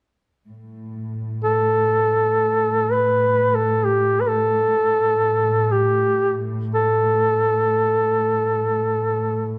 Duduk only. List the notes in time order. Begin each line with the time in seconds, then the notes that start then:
1.44 A4
2.92 B4
3.55 A4
3.84 G4
4.20 B4
4.28 A4
5.71 G4
6.74 A4